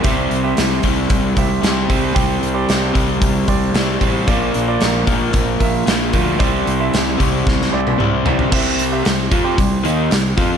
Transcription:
<<
  \new Staff \with { instrumentName = "Grand piano" } { \time 4/4 \key c \mixolydian \tempo 4 = 113 <g' c'' e''>8 r16 <g' c'' e''>4. r16 <g' c'' e''>4~ <g' c'' e''>16 r16 | <g' c'' g''>8 r16 <g' c'' d''>4. r16 <g' c'' d''>4~ <g' c'' d''>16 r16 | <f' bes' d''>8 r16 <f' bes' d''>4. r16 <f' bes' e''>4~ <f' bes' e''>16 r16 | <e' c'' d''>8 r16 <e' c'' e''>4. r16 <e' c'' d''>4~ <e' c'' d''>16 r16 |
<g' c'' e''>8 r16 <g' c'' e''>8. r16 <g' c'' g''>4. r8. | }
  \new Staff \with { instrumentName = "Overdriven electric guitar" } { \clef bass \time 4/4 \key c \mixolydian <c g c'>4. <c g c'>4. <c g c'>4 | <c g c'>4. <c g c'>4. <c g c'>4 | <bes, f bes>4. <bes, f bes>4. <bes, f bes>4 | <c g c'>4. <c g c'>4. <c g c'>4 |
<c g c'>4 <c g>8 <f c' f'>8 <c g>8 <ees bes ees'>8 <c g>8 <f c' f'>8 | }
  \new Staff \with { instrumentName = "Overdriven electric guitar" } { \clef bass \time 4/4 \key c \mixolydian <c g c'>2.~ <c g c'>8 <c g c'>8 | <c g c'>2.~ <c g c'>8 <c g c'>8 | <bes, f bes>2.~ <bes, f bes>8 <bes, f bes>8 | <c g c'>2.~ <c g c'>8 <c g c'>8 |
<c g c'>4 <c g>8 <f c' f'>8 <c g>8 <ees bes ees'>8 <c g>8 <f c' f'>8 | }
  \new Staff \with { instrumentName = "Fingered electric bass" } { \clef bass \time 4/4 \key c \mixolydian c,8 c,8 c,8 c,8 c,8 c,8 c,8 c,8 | c,8 c,8 c,8 c,8 c,8 c,8 c,8 a,,8 | bes,,8 bes,,8 bes,,8 bes,,8 bes,,8 bes,,8 bes,,8 d,8 | c,8 c,8 c,8 c,8 c,8 c,8 c,8 c,8 |
c,4 c,8 f,8 c,8 ees,8 c,8 f,8 | }
  \new DrumStaff \with { instrumentName = "Drums" } \drummode { \time 4/4 <hho bd>8 hho8 <hho sn>8 <hho bd>8 <hho bd>8 <hho bd>8 <hho sn>8 <hho bd>8 | <hho bd>8 hho8 <hho sn>8 <hho bd>8 <hho bd>8 <hho bd>8 <hho sn>8 <hho bd>8 | <hho bd>8 hho8 <hho sn>8 <hho bd>8 <hho bd>8 <hho bd>8 <hho sn>8 <hho bd>8 | <hho bd>8 hho8 <hho sn>8 <hho bd>8 <bd sn>16 sn8 tommh16 toml8 tomfh16 tomfh16 |
<cymc bd>8 hho8 <hho sn>8 <hho bd>8 <hho bd>8 hho8 <hho sn>8 <hho bd>8 | }
>>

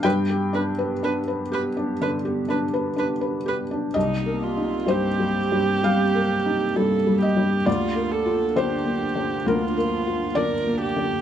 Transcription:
<<
  \new Staff \with { instrumentName = "Viola" } { \time 4/4 \key g \minor \tempo 4 = 64 b'8 b'8 b'8 b'8 b'8 b'8 b'8 b'8 | ees'8 f'8 g'2 a'8 g'8 | f'8 a'8 g'4 f'4 bes'8 g'8 | }
  \new Staff \with { instrumentName = "Felt piano" } { \time 4/4 \key g \minor << { g''2. r4 | ees''4 c''4 f''4. ees''8 | d''4 c''4 bes'4 d''4 | } \\ { <g, d'>16 g'16 d'16 b'16 d'16 b'16 g'16 d'16 d16 g'16 d'16 b'16 d'16 b'16 g'16 d'16 | \tuplet 3/2 { c,8 bes'8 ees'8 g,8 g8 g,8 g8 bes'8 ees'8 g,8 g8 g,8 } | \tuplet 3/2 { d,8 bes'8 f'8 d8 bes8 d8 d,8 bes'8 f'8 d8 bes8 d8 } | } >> }
  \new Staff \with { instrumentName = "Ambient pad" } { \time 4/4 \key g \minor <b d' g'>1 | <bes c' g'>1 | <bes d' f'>1 | }
>>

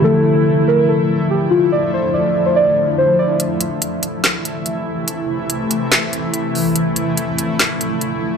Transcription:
<<
  \new Staff \with { instrumentName = "Synth keys" } { \time 4/4 \key d \minor \tempo 4 = 143 a'4. bes'8 a'4 g'8 f'8 | d''8 c''8 d''8. c''16 d''4 c''8 d''8 | r1 | r1 |
r1 | }
  \new Staff \with { instrumentName = "Synth keys" } { \clef bass \time 4/4 \key d \minor <d f a e'>1~ | <d f a e'>1 | r1 | r1 |
r1 | }
  \new Staff \with { instrumentName = "Ambient pad" } { \clef bass \time 4/4 \key d \minor << { <a e'>1~ | <a e'>1 | <a e'>1~ | <a e'>1~ |
<a e'>1 | } \\ { <d f>1~ | <d f>1 | <c e>1~ | <c e>1 |
<d f>1 | } >> }
  \new DrumStaff \with { instrumentName = "Drums" } \drummode { \time 4/4 r4 r4 r4 r4 | r4 r4 r4 r4 | hh8 hh8 hh8 hh8 <hc hh sn>8 hh8 hh4 | hh4 hh8 hh8 <hc hh sn>8 hh8 hh8 hho8 |
hh8 hh8 hh8 hh8 <hc hh sn>8 hh8 hh4 | }
>>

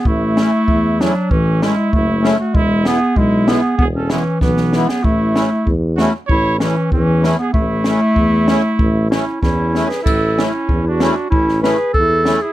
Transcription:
<<
  \new Staff \with { instrumentName = "Trumpet" } { \time 2/4 \key a \major \tempo 4 = 96 e'4. d'8 | cis'8 e'8 e'8. fis'16 | e'8 gis'8 e'8 gis'8 | gis'16 a'16 cis'8 b8. gis'16 |
e'4 r8 fis'8 | cis''8 cis'8 cis'8. gis'16 | e'2~ | e'8 cis'8 cis'8. gis'16 |
\tuplet 3/2 { e'4 cis'8~ cis'8 d'4 } | cis'8 gis'8 e'8. e'16 | }
  \new Staff \with { instrumentName = "Accordion" } { \time 2/4 \key a \major r8 <a cis' e'>8 r8 <a cis' e'>8 | r8 <a cis' e'>8 r8 <a cis' e'>8 | r8 <gis b e'>8 r8 <gis b e'>8 | r8 <gis b e'>8 r8 <gis b e'>8 |
r8 <a cis' e'>8 r8 <a cis' e'>8 | r8 <a cis' e'>8 r8 <a cis' e'>8 | r8 <a cis' e'>8 r8 <a cis' e'>8 | r8 <a cis' e'>8 r8 <a cis' e'>8 |
r8 <a cis' e'>8 r8 <a cis' e'>8 | r8 <a cis' e'>8 r8 <a cis' e'>8 | }
  \new Staff \with { instrumentName = "Clarinet" } { \time 2/4 \key a \major a4. fis8 | e8 gis8 a8. a16 | gis8 b8 gis8 b8 | b16 cis'16 e8 e8. b16 |
a4 r8 a8 | e'8 e8 e8. b16 | a2~ | a8 e'8 e'8. b'16 |
\tuplet 3/2 { a'4 e'8~ e'8 fis'4 } | e'8 b'8 a'8. gis'16 | }
  \new Staff \with { instrumentName = "Tuba" } { \clef bass \time 2/4 \key a \major a,,4 e,4 | a,,4 fis,,4 | e,,4 b,,4 | e,,4 b,,4 |
a,,4 e,4 | a,,4 e,4 | a,,4 e,4 | a,,4 e,4 |
a,,4 e,4 | a,,4 e,4 | }
  \new DrumStaff \with { instrumentName = "Drums" } \drummode { \time 2/4 bd8 sn8 bd8 sn8 | bd8 sn8 bd8 sn8 | bd8 sn8 bd8 sn8 | bd8 sn8 <bd sn>16 sn16 sn16 sn16 |
bd8 sn8 bd8 sn8 | bd8 sn8 bd8 sn8 | bd8 sn8 bd8 sn8 | bd8 sn8 <bd sn>8 sn16 sn16 |
<cymc bd>8 sn8 bd8 sn8 | bd16 sn16 sn8 bd8 sn8 | }
>>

